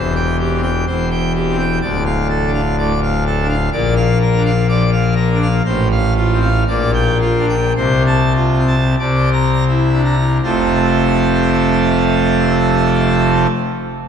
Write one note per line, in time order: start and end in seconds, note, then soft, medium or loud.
0.00 0.84 E1 medium
0.00 0.85 E2 medium
0.00 0.14 C5 medium
0.15 0.37 G5 loud
0.39 0.61 G4 medium
0.55 0.70 C4 medium
0.63 0.85 G5 medium
0.86 1.79 E1 medium
0.86 1.79 E2 medium
0.86 1.09 C5 medium
1.11 1.32 G5 medium
1.35 1.56 G4 medium
1.50 1.65 C4 medium
1.58 1.79 G5 medium
1.81 3.68 D1 medium
1.81 3.69 D2 medium
1.81 2.03 D5 medium
2.06 2.27 F5 loud
2.29 2.51 A4 medium
2.46 2.61 D4 medium
2.54 2.76 F5 medium
2.78 2.93 A2 medium
2.78 3.00 D5 medium
3.03 3.24 F5 medium
3.26 3.47 A4 medium
3.41 3.56 D4 medium
3.49 3.69 F5 medium
3.72 5.61 A#1 loud
3.72 5.61 A#2 loud
3.72 3.94 D5 medium
3.96 4.18 F5 loud
4.21 4.42 A#4 medium
4.37 4.51 D4 medium
4.45 4.66 F5 loud
4.68 4.83 F3 medium
4.68 4.90 D5 medium
4.92 5.14 F5 loud
5.16 5.38 A#4 medium
5.33 5.48 D4 medium
5.42 5.62 F5 medium
5.66 6.64 A1 loud
5.66 6.64 A2 loud
5.66 5.88 C5 medium
5.91 6.13 F5 loud
6.17 6.39 F4 medium
6.33 6.48 C4 medium
6.42 6.63 F5 medium
6.68 7.73 A#1 loud
6.68 7.73 A#2 loud
6.68 6.91 D5 loud
6.94 7.18 G5 loud
7.21 7.45 F4 loud
7.39 7.56 D4 medium
7.49 7.73 G5 medium
7.77 8.96 C2 loud
7.77 8.96 C3 loud
7.77 8.02 C5 medium
8.07 8.33 A5 loud
8.36 8.63 F4 medium
8.57 8.75 C4 medium
8.68 8.95 A5 medium
8.99 10.40 C2 medium
8.99 10.40 C3 medium
8.99 9.29 D5 medium
9.33 9.64 A#5 loud
9.68 10.01 E4 medium
9.93 10.16 D4 medium
10.05 10.38 A#5 medium
10.43 13.46 F1 medium
10.43 13.47 F2 medium
10.43 13.47 C3 medium
10.43 13.47 A3 medium
10.43 13.47 C4 medium
10.43 13.47 F4 medium
10.43 13.47 A4 medium